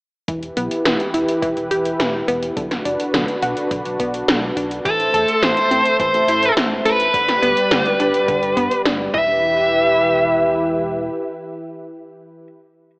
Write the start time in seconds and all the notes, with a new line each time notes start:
0.28 E1 E3 E4 G4 B4, kick, closed hi-hat
0.43 closed hi-hat
0.57 B1 B3, closed hi-hat
0.71 closed hi-hat
0.85 E1 E3, snare, closed hi-hat
1.00 closed hi-hat
1.14 E1 E4, closed hi-hat
1.28 closed hi-hat
1.42 E1 E3, kick, closed hi-hat
1.57 E1, closed hi-hat
1.71 E1 G4, closed hi-hat
1.85 closed hi-hat
2.00 E1 E3, snare, closed hi-hat
2.28 E1 B3, closed hi-hat
2.43 closed hi-hat
2.57 B1 D3 D4 F#4 B4, kick, closed hi-hat
2.71 snare, closed hi-hat
2.85 F#1 D4, closed hi-hat
3.00 closed hi-hat
3.14 B1 D3, snare, closed hi-hat
3.28 closed hi-hat
3.42 B1 F#4, closed hi-hat
3.57 closed hi-hat
3.71 B1 D3, kick, closed hi-hat
3.85 B1, closed hi-hat
4.00 B1 B3, kick, closed hi-hat
4.14 closed hi-hat
4.28 B1 D3, snare, closed hi-hat
4.57 B1 D4, closed hi-hat
4.71 closed hi-hat
4.85 A1 E3 A3 A4 C5 E5, kick, closed hi-hat
5.00 closed hi-hat
5.14 E2 A4, closed hi-hat
5.28 closed hi-hat
5.42 A1 E3 C5, snare, closed hi-hat
5.57 closed hi-hat
5.71 A1 C4, closed hi-hat
5.86 closed hi-hat
6.00 A1 E3 C5, kick, closed hi-hat
6.14 A1, closed hi-hat
6.28 A1 E4, closed hi-hat
6.43 closed hi-hat
6.57 A1 E3, snare, closed hi-hat
6.85 A1 A4 B4, closed hi-hat
7.00 closed hi-hat
7.14 G1 D3 G3 G4 B4 D5, kick, closed hi-hat
7.29 snare, closed hi-hat
7.43 D2 B3, closed hi-hat
7.57 closed hi-hat
7.71 G1 D3, snare, closed hi-hat
7.86 closed hi-hat
8.00 G1 D4, closed hi-hat
8.14 closed hi-hat
8.28 G1 D3, kick, closed hi-hat
8.43 G1, closed hi-hat
8.57 G2 B3, kick, closed hi-hat
8.71 closed hi-hat
8.85 G1 D4, snare, closed hi-hat
9.14 E1 E3 E4 G4 B4 E5, kick